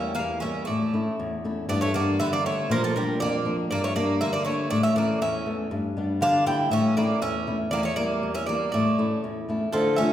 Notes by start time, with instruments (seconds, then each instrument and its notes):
Already playing: nylon-string guitar E2 G3 A#3 E4, bouzouki C#4 E5
0.15 nylon-string guitar E2, bouzouki A#3 F5
0.40 nylon-string guitar G3 A#3 E4, bouzouki C#4 E5
0.65 nylon-string guitar A2, bouzouki A3 D5
0.93 nylon-string guitar A3 C#4 E4
1.20 nylon-string guitar E2
1.44 nylon-string guitar A3 C#4 E4
1.69 nylon-string guitar G2, bouzouki B3 D5
1.81 bouzouki A3 C#5
1.94 nylon-string guitar G3 B3 D4, bouzouki A#3 D5
2.19 nylon-string guitar D3, bouzouki B3 E5
2.33 bouzouki A#3 D5
2.45 nylon-string guitar G3 B3 D4, bouzouki A3 C#5
2.70 nylon-string guitar A#2, bouzouki F3 A#4
2.84 bouzouki F3 A4
2.94 nylon-string guitar F3 A#3 D4, bouzouki G3 A#4
3.20 nylon-string guitar F2, bouzouki A#3 D5
3.45 nylon-string guitar F3 A#3 D4
3.71 nylon-string guitar G2, bouzouki A#3 D5
3.84 bouzouki A3 C#5
3.95 nylon-string guitar G3 A#3 D4, bouzouki A#3 D5
4.21 nylon-string guitar D3, bouzouki A#3 E5
4.33 bouzouki A#3 D5
4.45 nylon-string guitar G3 A#3 D4, bouzouki A3 C#5
4.70 nylon-string guitar A2, bouzouki A3 D5
4.83 bouzouki C#4 E5
4.95 nylon-string guitar E3 A3 C#4, bouzouki A#3 D5
5.21 nylon-string guitar E2, bouzouki C#4 E5
5.46 nylon-string guitar E3 A3 C#4
5.71 nylon-string guitar G2
5.97 nylon-string guitar G3 B3 D4
6.21 nylon-string guitar D3, bouzouki D4 F5
6.46 nylon-string guitar G3 B3 D4, bouzouki E4 G5
6.71 nylon-string guitar A2, bouzouki C#4 E5
6.97 nylon-string guitar A3 C#4 E4, bouzouki A#3 D5
7.21 nylon-string guitar E2, bouzouki C#4 E5
7.47 nylon-string guitar A3 C#4 E4
7.71 nylon-string guitar E2, bouzouki A#3 D5
7.83 bouzouki A3 C#5
7.96 nylon-string guitar G3 A#3 E4, bouzouki A#3 D5
8.23 nylon-string guitar E2
8.34 bouzouki C#4 E5
8.46 nylon-string guitar G3 A#3 E4, bouzouki A#3 D5
8.72 nylon-string guitar A2, bouzouki A3 D5
8.98 nylon-string guitar A3 C#4 E4
9.24 nylon-string guitar E2
9.49 nylon-string guitar A3 C#4 E4
9.72 nylon-string guitar D3, bouzouki F3 A4
9.96 nylon-string guitar A3 D4 F4, bouzouki C#4 E5